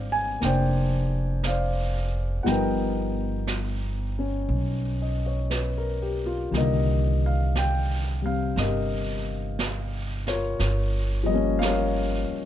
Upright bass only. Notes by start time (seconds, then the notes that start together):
Already playing: G#1
0.42 F1
2.46 G1
4.49 B1
6.52 C2
8.56 G1
10.60 G1
12.30 muted upright bass stroke